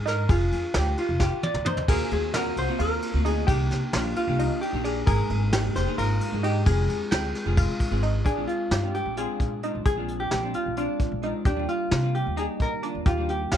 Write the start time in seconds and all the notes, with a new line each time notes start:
Already playing: G#2
0.06 D#4 A#4, snare, ride
0.29 F1 F4 G#4, kick, ride
0.52 F2, ride
0.74 D2 G4, snare, ride
0.97 F4, ride
1.09 F1
1.20 F4 G4, kick, snare
1.43 D5, high tom
1.54 D2, mid tom
1.65 D#4 C5, mid tom
1.77 floor tom
1.88 D#2 A#3 C4 F4 F#4 G#4 A#4, kick, ride, crash
2.11 D#2 G#4, ride
2.34 A#3 C4 F4 F#4 A#4, snare, ride
2.56 C2 C5, ride
2.68 A#3 C4 F4 F#4
2.79 D#2 F4 A#4, ride
3.02 ride
3.14 D2 A#3 C4 F4 F#4
3.25 D#4 G#4, ride
3.47 C2 A#3 D4 D#4 G4, kick, ride
3.71 C3, snare, ride
3.93 A#1 A#3 D4 D#4 F4 G4, snare, ride
4.16 F4, ride
4.27 C2 A#3 D4 D#4 G4
4.39 D#4, ride
4.61 G4, ride
4.73 A#1 A#3 D4 D#4 G4
4.84 D4 G#4, ride
5.07 G#1 G#3 A#3 D#4 G#4 A#4, kick, ride
5.30 G#1, ride
5.53 G#3 A#3 D#4 G4 G#4, snare, ride
5.75 F1 C5, snare, ride
5.87 G#3 A#3 D#4 G#4
5.98 G#1 F4 A#4, ride
6.21 ride
6.32 G#2 G#3 A#3 D#4 G#4
6.43 D#4 G4, ride
6.66 F1 G#3 C4 F4 G#4, kick, ride
6.88 F2, ride
7.11 D2 G#3 C4 F4 G#4 G5, snare, ride
7.35 snare, ride
7.46 F1 G#3 C4 F4 G#4
7.57 F4, kick, ride
7.80 kick, ride
7.91 G#1 G#3 C4 F4 G#4
8.03 D#4, ride
8.25 A#1 D4 G#4, kick, closed hi-hat
8.37 G#3 C4 D4 F4
8.47 F4, closed hi-hat
8.71 G2 G4, snare, closed hi-hat
8.83 G#3 C4 D4 F4
8.94 G4, closed hi-hat
9.05 A#1
9.17 G#3 C4 D4 F4 G#4, closed hi-hat
9.40 A#2, kick, closed hi-hat
9.63 G#3 C4 D4 D#4 F4, closed hi-hat
9.75 A#1
9.85 A#1 G#4, kick, closed hi-hat
9.97 G#3 C4 D4 F4
10.08 closed hi-hat
10.20 G4
10.31 A#1 G4, snare, closed hi-hat
10.43 G#3 C4 D4 F4
10.54 F4, closed hi-hat
10.66 A#1
10.76 G#3 C4 D4 F4, closed hi-hat
11.00 kick, closed hi-hat
11.12 A#1
11.22 G#3 C4 D4 D#4 F4, closed hi-hat
11.45 D#2 D4 G4, kick, closed hi-hat
11.56 G3 A#3 D4 F4
11.68 F4, closed hi-hat
11.91 C3 F4, snare, closed hi-hat
12.03 G3 A#3 D4 F4
12.15 G4, closed hi-hat
12.26 D#2
12.36 G3 A#3 D4 D#4 G4 G#4, closed hi-hat
12.60 D#3 A#4, kick, closed hi-hat
12.82 G3 A#3 D4 F4, closed hi-hat
12.95 D#2
13.06 D#2 F4 G4, kick, closed hi-hat
13.17 G3 A#3 D4 F4
13.29 G4, closed hi-hat
13.52 D#2 F4 G4, snare, closed hi-hat